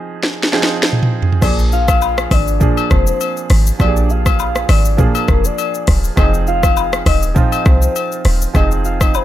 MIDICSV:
0, 0, Header, 1, 5, 480
1, 0, Start_track
1, 0, Tempo, 594059
1, 1148, Time_signature, 4, 2, 24, 8
1, 7471, End_track
2, 0, Start_track
2, 0, Title_t, "Soft synth lead"
2, 0, Program_c, 0, 80
2, 1157, Note_on_c, 0, 74, 109
2, 1263, Note_off_c, 0, 74, 0
2, 1397, Note_on_c, 0, 77, 122
2, 1880, Note_on_c, 0, 74, 102
2, 1892, Note_off_c, 0, 77, 0
2, 2114, Note_off_c, 0, 74, 0
2, 2120, Note_on_c, 0, 74, 104
2, 2360, Note_on_c, 0, 72, 91
2, 2373, Note_off_c, 0, 74, 0
2, 2486, Note_off_c, 0, 72, 0
2, 2492, Note_on_c, 0, 72, 85
2, 2810, Note_off_c, 0, 72, 0
2, 3077, Note_on_c, 0, 74, 111
2, 3314, Note_on_c, 0, 77, 122
2, 3326, Note_off_c, 0, 74, 0
2, 3793, Note_on_c, 0, 74, 103
2, 3805, Note_off_c, 0, 77, 0
2, 4031, Note_on_c, 0, 70, 94
2, 4043, Note_off_c, 0, 74, 0
2, 4266, Note_off_c, 0, 70, 0
2, 4271, Note_on_c, 0, 70, 86
2, 4405, Note_on_c, 0, 74, 92
2, 4417, Note_off_c, 0, 70, 0
2, 4751, Note_off_c, 0, 74, 0
2, 4993, Note_on_c, 0, 75, 110
2, 5100, Note_off_c, 0, 75, 0
2, 5235, Note_on_c, 0, 77, 124
2, 5680, Note_off_c, 0, 77, 0
2, 5715, Note_on_c, 0, 75, 103
2, 5935, Note_off_c, 0, 75, 0
2, 5957, Note_on_c, 0, 75, 102
2, 6176, Note_off_c, 0, 75, 0
2, 6196, Note_on_c, 0, 72, 84
2, 6315, Note_off_c, 0, 72, 0
2, 6328, Note_on_c, 0, 72, 84
2, 6648, Note_off_c, 0, 72, 0
2, 6915, Note_on_c, 0, 75, 108
2, 7022, Note_off_c, 0, 75, 0
2, 7154, Note_on_c, 0, 77, 110
2, 7286, Note_on_c, 0, 75, 101
2, 7298, Note_off_c, 0, 77, 0
2, 7395, Note_on_c, 0, 72, 97
2, 7407, Note_off_c, 0, 75, 0
2, 7471, Note_off_c, 0, 72, 0
2, 7471, End_track
3, 0, Start_track
3, 0, Title_t, "Grand piano"
3, 0, Program_c, 1, 0
3, 0, Control_c, 1, 64, 127
3, 0, Note_on_c, 1, 53, 85
3, 0, Note_on_c, 1, 60, 73
3, 0, Note_on_c, 1, 63, 77
3, 0, Note_on_c, 1, 68, 90
3, 418, Note_off_c, 1, 53, 0
3, 418, Note_on_c, 1, 53, 84
3, 425, Note_off_c, 1, 60, 0
3, 425, Note_on_c, 1, 60, 77
3, 432, Note_off_c, 1, 63, 0
3, 432, Note_on_c, 1, 63, 74
3, 439, Note_off_c, 1, 68, 0
3, 439, Note_on_c, 1, 68, 94
3, 986, Note_off_c, 1, 53, 0
3, 989, Note_off_c, 1, 60, 0
3, 993, Note_off_c, 1, 63, 0
3, 997, Note_off_c, 1, 68, 0
3, 1141, Note_on_c, 1, 53, 75
3, 1147, Note_on_c, 1, 58, 71
3, 1154, Note_on_c, 1, 62, 64
3, 1158, Control_c, 1, 64, 0
3, 1161, Note_on_c, 1, 68, 83
3, 1292, Control_c, 1, 64, 127
3, 1887, Note_off_c, 1, 53, 0
3, 1890, Note_off_c, 1, 58, 0
3, 1893, Note_off_c, 1, 62, 0
3, 1897, Note_off_c, 1, 68, 0
3, 2099, Note_on_c, 1, 53, 77
3, 2107, Note_on_c, 1, 58, 70
3, 2112, Note_on_c, 1, 62, 70
3, 2121, Note_on_c, 1, 68, 83
3, 2846, Note_off_c, 1, 53, 0
3, 2850, Note_off_c, 1, 58, 0
3, 2853, Note_off_c, 1, 62, 0
3, 2857, Note_off_c, 1, 68, 0
3, 3059, Note_on_c, 1, 53, 70
3, 3066, Note_on_c, 1, 58, 66
3, 3073, Note_on_c, 1, 62, 67
3, 3079, Note_on_c, 1, 67, 66
3, 3131, Note_off_c, 1, 67, 0
3, 3131, Note_on_c, 1, 68, 77
3, 3806, Note_off_c, 1, 53, 0
3, 3810, Note_off_c, 1, 58, 0
3, 3813, Note_off_c, 1, 62, 0
3, 3842, Note_off_c, 1, 68, 0
3, 4017, Note_on_c, 1, 53, 80
3, 4025, Note_on_c, 1, 58, 72
3, 4031, Note_on_c, 1, 62, 74
3, 4038, Note_on_c, 1, 68, 84
3, 4765, Note_off_c, 1, 53, 0
3, 4769, Note_off_c, 1, 58, 0
3, 4772, Note_off_c, 1, 62, 0
3, 4776, Note_off_c, 1, 68, 0
3, 4976, Note_on_c, 1, 53, 74
3, 4983, Note_on_c, 1, 60, 72
3, 4989, Note_on_c, 1, 63, 70
3, 4996, Note_on_c, 1, 68, 85
3, 4998, Control_c, 1, 64, 0
3, 5135, Control_c, 1, 64, 127
3, 5724, Note_off_c, 1, 53, 0
3, 5728, Note_off_c, 1, 60, 0
3, 5731, Note_off_c, 1, 63, 0
3, 5735, Note_off_c, 1, 68, 0
3, 5934, Note_on_c, 1, 53, 79
3, 5941, Note_on_c, 1, 60, 70
3, 5947, Note_on_c, 1, 63, 75
3, 5955, Note_on_c, 1, 65, 87
3, 6684, Note_off_c, 1, 53, 0
3, 6687, Note_off_c, 1, 60, 0
3, 6690, Note_off_c, 1, 63, 0
3, 6694, Note_off_c, 1, 65, 0
3, 6895, Note_on_c, 1, 53, 72
3, 6902, Note_on_c, 1, 60, 72
3, 6909, Note_on_c, 1, 63, 66
3, 6914, Note_on_c, 1, 68, 82
3, 7471, Note_off_c, 1, 53, 0
3, 7471, Note_off_c, 1, 60, 0
3, 7471, Note_off_c, 1, 63, 0
3, 7471, Note_off_c, 1, 68, 0
3, 7471, End_track
4, 0, Start_track
4, 0, Title_t, "808-style bass"
4, 0, Program_c, 2, 38
4, 1149, Note_on_c, 2, 34, 111
4, 1836, Note_off_c, 2, 34, 0
4, 1868, Note_on_c, 2, 32, 88
4, 2134, Note_off_c, 2, 32, 0
4, 2351, Note_on_c, 2, 29, 97
4, 2522, Note_off_c, 2, 29, 0
4, 2829, Note_on_c, 2, 32, 108
4, 3001, Note_off_c, 2, 32, 0
4, 3068, Note_on_c, 2, 34, 104
4, 3756, Note_off_c, 2, 34, 0
4, 3789, Note_on_c, 2, 32, 90
4, 4055, Note_off_c, 2, 32, 0
4, 4270, Note_on_c, 2, 29, 85
4, 4441, Note_off_c, 2, 29, 0
4, 4750, Note_on_c, 2, 27, 100
4, 4921, Note_off_c, 2, 27, 0
4, 4988, Note_on_c, 2, 29, 107
4, 5676, Note_off_c, 2, 29, 0
4, 5707, Note_on_c, 2, 27, 96
4, 5974, Note_off_c, 2, 27, 0
4, 6189, Note_on_c, 2, 36, 91
4, 6361, Note_off_c, 2, 36, 0
4, 6666, Note_on_c, 2, 27, 97
4, 6839, Note_off_c, 2, 27, 0
4, 6906, Note_on_c, 2, 29, 109
4, 7471, Note_off_c, 2, 29, 0
4, 7471, End_track
5, 0, Start_track
5, 0, Title_t, "Drums"
5, 189, Note_on_c, 9, 38, 58
5, 269, Note_off_c, 9, 38, 0
5, 349, Note_on_c, 9, 38, 66
5, 429, Note_off_c, 9, 38, 0
5, 429, Note_on_c, 9, 38, 61
5, 510, Note_off_c, 9, 38, 0
5, 510, Note_on_c, 9, 38, 76
5, 591, Note_off_c, 9, 38, 0
5, 670, Note_on_c, 9, 38, 90
5, 750, Note_off_c, 9, 38, 0
5, 750, Note_on_c, 9, 45, 81
5, 829, Note_off_c, 9, 45, 0
5, 829, Note_on_c, 9, 45, 97
5, 910, Note_off_c, 9, 45, 0
5, 989, Note_on_c, 9, 43, 107
5, 1070, Note_off_c, 9, 43, 0
5, 1070, Note_on_c, 9, 43, 92
5, 1149, Note_on_c, 9, 36, 108
5, 1149, Note_on_c, 9, 37, 93
5, 1149, Note_on_c, 9, 49, 99
5, 1149, Note_on_c, 9, 82, 68
5, 1150, Note_off_c, 9, 43, 0
5, 1159, Note_on_c, 9, 67, 82
5, 1230, Note_off_c, 9, 36, 0
5, 1230, Note_off_c, 9, 37, 0
5, 1230, Note_off_c, 9, 49, 0
5, 1230, Note_off_c, 9, 82, 0
5, 1240, Note_off_c, 9, 67, 0
5, 1282, Note_on_c, 9, 82, 54
5, 1363, Note_off_c, 9, 82, 0
5, 1390, Note_on_c, 9, 82, 47
5, 1471, Note_off_c, 9, 82, 0
5, 1521, Note_on_c, 9, 37, 91
5, 1521, Note_on_c, 9, 82, 88
5, 1522, Note_on_c, 9, 36, 96
5, 1523, Note_on_c, 9, 67, 71
5, 1602, Note_off_c, 9, 36, 0
5, 1602, Note_off_c, 9, 37, 0
5, 1602, Note_off_c, 9, 82, 0
5, 1604, Note_off_c, 9, 67, 0
5, 1629, Note_on_c, 9, 82, 77
5, 1632, Note_on_c, 9, 77, 78
5, 1710, Note_off_c, 9, 82, 0
5, 1713, Note_off_c, 9, 77, 0
5, 1759, Note_on_c, 9, 82, 52
5, 1761, Note_on_c, 9, 37, 97
5, 1840, Note_off_c, 9, 82, 0
5, 1841, Note_off_c, 9, 37, 0
5, 1868, Note_on_c, 9, 36, 88
5, 1868, Note_on_c, 9, 67, 84
5, 1869, Note_on_c, 9, 37, 92
5, 1869, Note_on_c, 9, 46, 72
5, 1869, Note_on_c, 9, 82, 54
5, 1949, Note_off_c, 9, 36, 0
5, 1949, Note_off_c, 9, 67, 0
5, 1950, Note_off_c, 9, 37, 0
5, 1950, Note_off_c, 9, 46, 0
5, 1950, Note_off_c, 9, 82, 0
5, 2001, Note_on_c, 9, 82, 86
5, 2082, Note_off_c, 9, 82, 0
5, 2108, Note_on_c, 9, 36, 92
5, 2108, Note_on_c, 9, 82, 77
5, 2111, Note_on_c, 9, 45, 104
5, 2188, Note_off_c, 9, 82, 0
5, 2189, Note_off_c, 9, 36, 0
5, 2192, Note_off_c, 9, 45, 0
5, 2240, Note_on_c, 9, 82, 65
5, 2241, Note_on_c, 9, 67, 87
5, 2321, Note_off_c, 9, 82, 0
5, 2322, Note_off_c, 9, 67, 0
5, 2348, Note_on_c, 9, 82, 52
5, 2350, Note_on_c, 9, 37, 97
5, 2351, Note_on_c, 9, 36, 93
5, 2429, Note_off_c, 9, 82, 0
5, 2431, Note_off_c, 9, 37, 0
5, 2432, Note_off_c, 9, 36, 0
5, 2480, Note_on_c, 9, 82, 99
5, 2561, Note_off_c, 9, 82, 0
5, 2591, Note_on_c, 9, 82, 75
5, 2592, Note_on_c, 9, 67, 73
5, 2672, Note_off_c, 9, 82, 0
5, 2673, Note_off_c, 9, 67, 0
5, 2722, Note_on_c, 9, 82, 61
5, 2803, Note_off_c, 9, 82, 0
5, 2826, Note_on_c, 9, 46, 78
5, 2826, Note_on_c, 9, 82, 56
5, 2830, Note_on_c, 9, 37, 96
5, 2907, Note_off_c, 9, 46, 0
5, 2907, Note_off_c, 9, 82, 0
5, 2911, Note_off_c, 9, 37, 0
5, 2962, Note_on_c, 9, 82, 86
5, 3043, Note_off_c, 9, 82, 0
5, 3069, Note_on_c, 9, 36, 110
5, 3069, Note_on_c, 9, 37, 92
5, 3069, Note_on_c, 9, 82, 68
5, 3080, Note_on_c, 9, 67, 80
5, 3149, Note_off_c, 9, 82, 0
5, 3150, Note_off_c, 9, 36, 0
5, 3150, Note_off_c, 9, 37, 0
5, 3160, Note_off_c, 9, 67, 0
5, 3203, Note_on_c, 9, 82, 59
5, 3284, Note_off_c, 9, 82, 0
5, 3311, Note_on_c, 9, 82, 47
5, 3392, Note_off_c, 9, 82, 0
5, 3441, Note_on_c, 9, 36, 95
5, 3442, Note_on_c, 9, 37, 87
5, 3442, Note_on_c, 9, 82, 91
5, 3444, Note_on_c, 9, 67, 76
5, 3522, Note_off_c, 9, 36, 0
5, 3523, Note_off_c, 9, 37, 0
5, 3523, Note_off_c, 9, 82, 0
5, 3525, Note_off_c, 9, 67, 0
5, 3550, Note_on_c, 9, 82, 78
5, 3553, Note_on_c, 9, 77, 79
5, 3630, Note_off_c, 9, 82, 0
5, 3633, Note_off_c, 9, 77, 0
5, 3680, Note_on_c, 9, 82, 57
5, 3681, Note_on_c, 9, 37, 94
5, 3761, Note_off_c, 9, 82, 0
5, 3762, Note_off_c, 9, 37, 0
5, 3789, Note_on_c, 9, 37, 94
5, 3789, Note_on_c, 9, 46, 75
5, 3789, Note_on_c, 9, 67, 85
5, 3789, Note_on_c, 9, 82, 54
5, 3870, Note_off_c, 9, 37, 0
5, 3870, Note_off_c, 9, 46, 0
5, 3870, Note_off_c, 9, 67, 0
5, 3870, Note_off_c, 9, 82, 0
5, 3920, Note_on_c, 9, 82, 86
5, 4001, Note_off_c, 9, 82, 0
5, 4027, Note_on_c, 9, 82, 79
5, 4028, Note_on_c, 9, 36, 91
5, 4031, Note_on_c, 9, 45, 97
5, 4108, Note_off_c, 9, 36, 0
5, 4108, Note_off_c, 9, 82, 0
5, 4112, Note_off_c, 9, 45, 0
5, 4160, Note_on_c, 9, 82, 64
5, 4161, Note_on_c, 9, 67, 85
5, 4241, Note_off_c, 9, 67, 0
5, 4241, Note_off_c, 9, 82, 0
5, 4267, Note_on_c, 9, 82, 49
5, 4269, Note_on_c, 9, 37, 95
5, 4270, Note_on_c, 9, 36, 100
5, 4348, Note_off_c, 9, 82, 0
5, 4350, Note_off_c, 9, 37, 0
5, 4351, Note_off_c, 9, 36, 0
5, 4400, Note_on_c, 9, 82, 99
5, 4480, Note_off_c, 9, 82, 0
5, 4511, Note_on_c, 9, 82, 76
5, 4512, Note_on_c, 9, 67, 74
5, 4592, Note_off_c, 9, 82, 0
5, 4593, Note_off_c, 9, 67, 0
5, 4641, Note_on_c, 9, 82, 57
5, 4722, Note_off_c, 9, 82, 0
5, 4745, Note_on_c, 9, 46, 80
5, 4745, Note_on_c, 9, 82, 56
5, 4749, Note_on_c, 9, 37, 93
5, 4750, Note_on_c, 9, 36, 89
5, 4826, Note_off_c, 9, 46, 0
5, 4826, Note_off_c, 9, 82, 0
5, 4830, Note_off_c, 9, 37, 0
5, 4831, Note_off_c, 9, 36, 0
5, 4881, Note_on_c, 9, 82, 82
5, 4962, Note_off_c, 9, 82, 0
5, 4987, Note_on_c, 9, 36, 109
5, 4987, Note_on_c, 9, 82, 66
5, 4988, Note_on_c, 9, 37, 96
5, 4998, Note_on_c, 9, 67, 78
5, 5068, Note_off_c, 9, 36, 0
5, 5068, Note_off_c, 9, 82, 0
5, 5069, Note_off_c, 9, 37, 0
5, 5079, Note_off_c, 9, 67, 0
5, 5122, Note_on_c, 9, 82, 56
5, 5203, Note_off_c, 9, 82, 0
5, 5228, Note_on_c, 9, 82, 45
5, 5309, Note_off_c, 9, 82, 0
5, 5359, Note_on_c, 9, 37, 88
5, 5359, Note_on_c, 9, 82, 88
5, 5360, Note_on_c, 9, 36, 93
5, 5362, Note_on_c, 9, 67, 71
5, 5440, Note_off_c, 9, 37, 0
5, 5440, Note_off_c, 9, 82, 0
5, 5441, Note_off_c, 9, 36, 0
5, 5443, Note_off_c, 9, 67, 0
5, 5468, Note_on_c, 9, 82, 80
5, 5469, Note_on_c, 9, 77, 78
5, 5549, Note_off_c, 9, 82, 0
5, 5550, Note_off_c, 9, 77, 0
5, 5598, Note_on_c, 9, 82, 55
5, 5599, Note_on_c, 9, 37, 99
5, 5679, Note_off_c, 9, 82, 0
5, 5680, Note_off_c, 9, 37, 0
5, 5706, Note_on_c, 9, 36, 85
5, 5707, Note_on_c, 9, 37, 93
5, 5707, Note_on_c, 9, 46, 77
5, 5707, Note_on_c, 9, 67, 85
5, 5707, Note_on_c, 9, 82, 53
5, 5787, Note_off_c, 9, 36, 0
5, 5788, Note_off_c, 9, 37, 0
5, 5788, Note_off_c, 9, 46, 0
5, 5788, Note_off_c, 9, 67, 0
5, 5788, Note_off_c, 9, 82, 0
5, 5838, Note_on_c, 9, 82, 89
5, 5919, Note_off_c, 9, 82, 0
5, 5945, Note_on_c, 9, 82, 74
5, 5946, Note_on_c, 9, 36, 96
5, 5949, Note_on_c, 9, 45, 101
5, 6026, Note_off_c, 9, 82, 0
5, 6027, Note_off_c, 9, 36, 0
5, 6030, Note_off_c, 9, 45, 0
5, 6079, Note_on_c, 9, 67, 85
5, 6079, Note_on_c, 9, 82, 64
5, 6160, Note_off_c, 9, 67, 0
5, 6160, Note_off_c, 9, 82, 0
5, 6186, Note_on_c, 9, 82, 52
5, 6188, Note_on_c, 9, 37, 99
5, 6189, Note_on_c, 9, 36, 93
5, 6267, Note_off_c, 9, 82, 0
5, 6269, Note_off_c, 9, 37, 0
5, 6270, Note_off_c, 9, 36, 0
5, 6318, Note_on_c, 9, 82, 99
5, 6399, Note_off_c, 9, 82, 0
5, 6429, Note_on_c, 9, 82, 74
5, 6431, Note_on_c, 9, 67, 72
5, 6510, Note_off_c, 9, 82, 0
5, 6512, Note_off_c, 9, 67, 0
5, 6561, Note_on_c, 9, 82, 60
5, 6641, Note_off_c, 9, 82, 0
5, 6664, Note_on_c, 9, 46, 78
5, 6664, Note_on_c, 9, 82, 57
5, 6668, Note_on_c, 9, 37, 92
5, 6745, Note_off_c, 9, 46, 0
5, 6745, Note_off_c, 9, 82, 0
5, 6749, Note_off_c, 9, 37, 0
5, 6800, Note_on_c, 9, 82, 83
5, 6881, Note_off_c, 9, 82, 0
5, 6906, Note_on_c, 9, 82, 66
5, 6907, Note_on_c, 9, 36, 114
5, 6907, Note_on_c, 9, 37, 93
5, 6916, Note_on_c, 9, 67, 78
5, 6987, Note_off_c, 9, 36, 0
5, 6987, Note_off_c, 9, 82, 0
5, 6988, Note_off_c, 9, 37, 0
5, 6997, Note_off_c, 9, 67, 0
5, 7041, Note_on_c, 9, 82, 57
5, 7121, Note_off_c, 9, 82, 0
5, 7148, Note_on_c, 9, 82, 50
5, 7229, Note_off_c, 9, 82, 0
5, 7279, Note_on_c, 9, 36, 93
5, 7279, Note_on_c, 9, 37, 86
5, 7279, Note_on_c, 9, 82, 89
5, 7282, Note_on_c, 9, 67, 75
5, 7360, Note_off_c, 9, 36, 0
5, 7360, Note_off_c, 9, 37, 0
5, 7360, Note_off_c, 9, 82, 0
5, 7363, Note_off_c, 9, 67, 0
5, 7387, Note_on_c, 9, 82, 78
5, 7391, Note_on_c, 9, 77, 79
5, 7468, Note_off_c, 9, 82, 0
5, 7471, Note_off_c, 9, 77, 0
5, 7471, End_track
0, 0, End_of_file